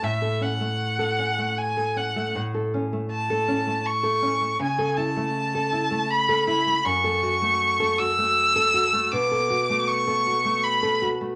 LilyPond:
<<
  \new Staff \with { instrumentName = "Violin" } { \time 3/4 \key fis \minor \tempo 4 = 79 e''8 fis''4. gis''8 fis''8 | r4 a''4 cis'''4 | gis''8 a''4. b''8 b''8 | cis'''4. e'''4. |
d'''4 cis'''4 b''8 r8 | }
  \new Staff \with { instrumentName = "Nylon-string guitar" } { \time 3/4 \key fis \minor a,16 a'16 cis'16 a8 a'16 cis'16 a8 a'16 cis'16 a16 | a,16 a'16 cis'16 a8 a'16 cis'16 a8 a'16 cis'16 a16 | cis16 a'16 e'16 a8 a'16 e'16 a8 a'16 e'16 a16 | fis,16 a'16 fis'16 a8 a'16 fis'16 a8 a'16 fis'16 a16 |
b,16 a'16 fis'16 a8 a'16 fis'16 a8 a'16 fis'16 a16 | }
>>